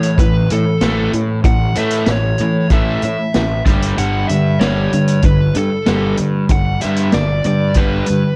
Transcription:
Already playing: A2 E3 C#5
0.03 closed hi-hat
0.18 A1 A2 E3 B4, kick, closed hi-hat
0.50 A2 E3 A4, closed hi-hat
0.81 A1 A2 E3 A3, snare, closed hi-hat
1.13 A2 E3, closed hi-hat
1.44 A1 A2 E3 F#5, kick, closed hi-hat
1.75 A2 E3 A3 E5, closed hi-hat
1.90 closed hi-hat
2.06 A1 A2 E3, snare, closed hi-hat
2.11 C#5
2.38 A2 E3, closed hi-hat
2.70 A1 A2 E3 A3 E5, kick, closed hi-hat
3.02 A2 E3 E5, closed hi-hat
3.34 A1 A2 E3, snare, closed hi-hat
3.66 G1 G2 D3 G3, kick, snare, closed hi-hat
3.82 closed hi-hat
3.97 G1 G2 D3 G3 F#5, closed hi-hat
4.28 G2 D3 E5, closed hi-hat
4.59 G1 G2 D3 G3 C#5, snare, closed hi-hat
4.93 G2 D3, closed hi-hat
5.08 closed hi-hat
5.22 G1 G2 D3 B4, kick, closed hi-hat
5.55 G2 D3 A4, closed hi-hat
5.86 G1 G2 D3 G3, snare, closed hi-hat
6.17 G2 D3, closed hi-hat
6.49 G1 G2 D3 F#5, kick, closed hi-hat
6.81 G2 D3 G3 E5, closed hi-hat
6.96 closed hi-hat
7.12 G1 G2 D3 D5, snare, closed hi-hat
7.44 G2 D3 D5, closed hi-hat
7.74 G1 G2 D3 G3 B4, kick, closed hi-hat
8.06 G2 D3, closed hi-hat
8.10 G2

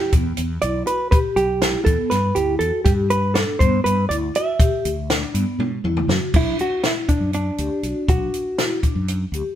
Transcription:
Already playing: G4
0.12 E2 B3, kick, closed hi-hat
0.37 E2, closed hi-hat
0.62 B1 E4 D5, closed hi-hat
0.87 B4, closed hi-hat
1.11 G4 B4, kick, closed hi-hat
1.36 B1 G4, closed hi-hat
1.62 E4, snare, closed hi-hat
1.85 E2 B3 A4, kick, closed hi-hat
2.10 G2 B4, snare, closed hi-hat
2.35 D2 E4 G4, closed hi-hat
2.59 E2 F#4 A4, closed hi-hat
2.85 G2 G4, kick, closed hi-hat
3.10 B4, closed hi-hat
3.34 D4 A4, snare, closed hi-hat
3.59 G2 B3 C5, kick, closed hi-hat
3.84 G2 B4, closed hi-hat
4.09 D2 E4 D5, closed hi-hat
4.35 F#4 E5, closed hi-hat
4.60 G4, kick, closed hi-hat
4.85 D2, closed hi-hat
5.10 D4, snare, closed hi-hat
5.18 D5
5.34 G2 B3, closed hi-hat
5.59 B2, high tom
5.84 E2 E4, mid tom
5.97 mid tom
6.08 F#2 F#4, snare
6.34 B1 D4 E4, kick, crash
6.59 F#4, closed hi-hat
6.83 E4, snare, closed hi-hat
7.09 D4, kick, closed hi-hat
7.20 F#2
7.33 D4, closed hi-hat
7.58 D2 G4, closed hi-hat
7.83 B1 F#4, closed hi-hat
8.09 B1 D4 F#4, kick, closed hi-hat
8.34 closed hi-hat
8.58 E4, snare, closed hi-hat
8.83 D4, kick, closed hi-hat
8.95 F#2
9.08 closed hi-hat
9.32 D2 G4, closed hi-hat

